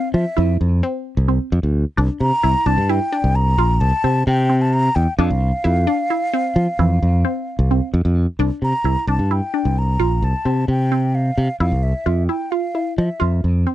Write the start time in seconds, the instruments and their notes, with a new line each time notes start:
Already playing: synth arpeggio sound C4, flute F5
0.13 fingered electric bass F3, flute E5
0.37 fingered electric bass F2, synth arpeggio sound E4
0.61 fingered electric bass F2
0.83 synth arpeggio sound C4
1.17 fingered electric bass C2
1.28 synth arpeggio sound C4
1.52 fingered electric bass F2
1.63 fingered electric bass D2
1.97 fingered electric bass C2, synth arpeggio sound D4
2.20 fingered electric bass C3, flute A#5
2.43 fingered electric bass C2, synth arpeggio sound E4
2.66 fingered electric bass C2, synth arpeggio sound D4, flute A5
2.78 fingered electric bass G2
2.89 synth arpeggio sound E4, flute G5
3.12 synth arpeggio sound D4
3.24 fingered electric bass C2
3.35 flute A#5
3.58 fingered electric bass A#1, synth arpeggio sound F4
3.80 fingered electric bass C2, flute A5
4.04 fingered electric bass C3, synth arpeggio sound C4
4.27 fingered electric bass C3, flute G5
4.50 synth arpeggio sound C4
4.61 flute A5
4.73 flute A#5
4.95 fingered electric bass E2, flute G5
5.18 fingered electric bass F2, synth arpeggio sound D4, flute F5
5.30 fingered electric bass C2
5.64 fingered electric bass F2, synth arpeggio sound E4
5.87 synth arpeggio sound D4
6.10 synth arpeggio sound E4
6.33 synth arpeggio sound C4
6.56 fingered electric bass F3
6.79 fingered electric bass F2, synth arpeggio sound E3
7.02 fingered electric bass F2
7.25 synth arpeggio sound C4
7.59 fingered electric bass C2
7.71 synth arpeggio sound C4
7.94 fingered electric bass F2
8.05 fingered electric bass F2
8.39 fingered electric bass C2, synth arpeggio sound D4
8.62 fingered electric bass C3, flute A#5
8.84 fingered electric bass C2, synth arpeggio sound E4
9.07 fingered electric bass C2, synth arpeggio sound D4, flute A5
9.19 fingered electric bass G2
9.31 synth arpeggio sound E4, flute G5
9.54 synth arpeggio sound D4
9.65 fingered electric bass C2
9.78 flute A#5
10.00 fingered electric bass A#1, synth arpeggio sound F4
10.22 fingered electric bass C2, flute A5
10.45 fingered electric bass C3, synth arpeggio sound C4
10.68 fingered electric bass C3, flute G5
10.92 synth arpeggio sound C4
11.15 flute F5
11.38 fingered electric bass C3
11.60 fingered electric bass F2, synth arpeggio sound E4, flute F5
11.72 fingered electric bass C2
11.83 flute E5
12.06 fingered electric bass F2, synth arpeggio sound F4
12.28 synth arpeggio sound E4, flute G5
12.51 synth arpeggio sound F4, flute F5
12.75 synth arpeggio sound E4
12.97 fingered electric bass F3, flute E5
13.20 fingered electric bass F2, synth arpeggio sound F4
13.44 fingered electric bass F2
13.67 synth arpeggio sound C4